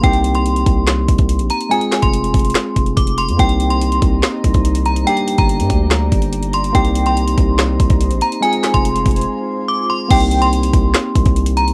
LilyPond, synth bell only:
\new Staff \with { instrumentName = "Synth bell" } { \time 4/4 \key c \minor \tempo 4 = 143 g''8. c'''2~ c'''8. bes''8 | aes''8. c'''2~ c'''16 d'''8 c'''8 | g''8. c'''2~ c'''8. bes''8 | g''8. bes''2~ bes''8. c'''8 |
g''8. c'''2~ c'''8. bes''8 | aes''8. c'''2~ c'''16 d'''8 c'''8 | g''8. c'''2~ c'''8. bes''8 | }